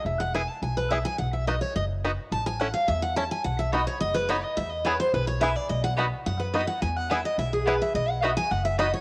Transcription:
<<
  \new Staff \with { instrumentName = "Steel-string acoustic guitar" } { \time 4/4 \key b \mixolydian \tempo 4 = 213 e''8 fis''8 gis''8 a''8 gis''8 b'8 e''8 gis''8 | fis''8 e''8 dis''8 cis''8 dis''8 r4. | a''8 gis''8 fis''8 eis''8 e''8 fis''8 a''8 gis''8 | fis''8 e''8 dis''8 cis''8 dis''8 b'8 cis''8 dis''8 |
e''8 dis''8 cis''8 c''8 b'8 cis''8 e''8 d''8 | dis''8 fis''8 r4 fis''8 b'8 dis''8 fis''8 | gis''8 fis''8 e''8 dis''8 e''8 gis'8 b'8 e''8 | dis''8 fis''8 e''8 gis''8 fis''8 e''8 dis''8 cis''8 | }
  \new Staff \with { instrumentName = "Mandolin" } { \time 4/4 \key b \mixolydian r1 | r1 | r1 | r4 <b fis' dis'' b''>8 r4. <b fis' dis'' b''>8 r8 |
r4 <b e' b' gis''>8 r4. <b e' b' gis''>8 r8 | r4 <b fis' dis'' b''>8 r4. <b fis' dis'' b''>8 r8 | r4 <b e' b' gis''>8 r4. <b e' b' gis''>8 r8 | r4 <b fis' dis'' b''>8 r4. <b fis' dis'' b''>8 r8 | }
  \new Staff \with { instrumentName = "Five-string banjo" } { \time 4/4 \key b \mixolydian r4 <b e' gis'>8 r4. <b e' gis'>8 r8 | r4 <b dis' fis'>8 r4. <b dis' fis'>8 r8 | r4 <cis' e' a'>8 r4. <cis' e' a'>8 r8 | r4 <b dis' fis'>8 r4. <b dis' fis'>8 r8 |
r4 <b e' gis'>8 r4. <b e' gis'>8 r8 | r4 <b dis' fis'>8 r4. <b dis' fis'>8 r8 | r4 <b e' gis'>8 r4. <b e' gis'>8 r8 | r4 <b dis' fis'>8 r4. <b dis' fis'>8 r8 | }
  \new Staff \with { instrumentName = "Upright bass" } { \clef bass \time 4/4 \key b \mixolydian e,,2 b,,2 | b,,2 fis,,2 | a,,2 e,2 | b,,2 fis,,2 |
e,2 b,,2 | b,,2 fis,2 | e,2 b,,2 | b,,2 fis,,2 | }
>>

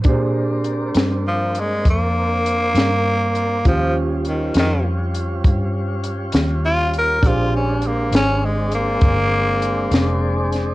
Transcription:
<<
  \new Staff \with { instrumentName = "Upright piano" } { \time 12/8 \key bes \mixolydian \tempo 4. = 67 <d' g' aes' c''>1. | <des' f' g' c''>1. | <d' g' aes' c''>1. | }
  \new Staff \with { instrumentName = "Tonewheel organ" } { \time 12/8 \key bes \mixolydian <bes c' d'>1. | <g des' f'>1. | <aes c' d'>1. | }
  \new Staff \with { instrumentName = "Tenor saxophone" } { \time 12/8 \key bes \mixolydian r2 f8 aes8 bes2. | f8 r8 ees8 ees8 r2. f'8 bes'8 | f'8 des'8 bes8 des'8 aes8 bes2. r8 | }
  \new Staff \with { instrumentName = "Fingered electric bass" } { \clef bass \time 12/8 \key bes \mixolydian bes,4. g,4. f,4. g,4. | ees,4. f,4. g,4. ees,4. | bes,,4. aes,,4. g,,4. f,,4. | }
  \new DrumStaff \with { instrumentName = "Drums" } \drummode { \time 12/8 <hh bd>4 hh8 <hh sn>4 hh8 <hh bd>4 hh8 <hh sn>4 hh8 | <hh bd>4 hh8 <hh sn>4 hh8 <hh bd>4 hh8 <hh sn>4 hh8 | <hh bd>4 hh8 <hh sn>4 hh8 <hh bd>4 hh8 <hh sn>4 <hh sn>8 | }
>>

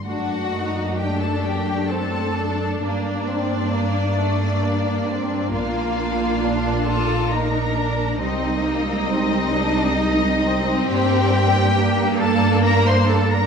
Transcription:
<<
  \new Staff \with { instrumentName = "Violin section" } { \time 3/4 \key g \minor \tempo 4 = 66 fis''4 g''16 a''16 g''8 a''4 | d''2. | f''4. a''8 bes''4 | ees''2. |
g''4. a''8 bes''16 c'''16 a''16 bes''16 | }
  \new Staff \with { instrumentName = "Cello section" } { \time 3/4 \key g \minor fis'4 g'16 a'16 g'8 a'4 | d'2. | f'4. a'8 bes'4 | ees'2. |
g'4. a'8 bes'16 c''16 a'16 bes'16 | }
  \new Staff \with { instrumentName = "Violin section" } { \time 3/4 \key g \minor d'8 ees'8 d'4 c'8 d'8 | bes8 c'8 bes8 a8 bes8 c'8 | bes4 d'8 f'8 ees'8 d'8 | c'8 bes8 c'8 d'8 ees'8 c'8~ |
c'4 bes2 | }
  \new Staff \with { instrumentName = "Viola section" } { \time 3/4 \key g \minor << { d'2.~ | d'2. | d'2. | c'2. |
d'2. | } \\ { a2. | bes2.~ | bes2. | g2. |
bes2. | } >> }
  \new Staff \with { instrumentName = "Double bass section" } { \clef bass \time 3/4 \key g \minor fis,2. | g,2. | bes,,2. | c,2. |
g,2. | }
>>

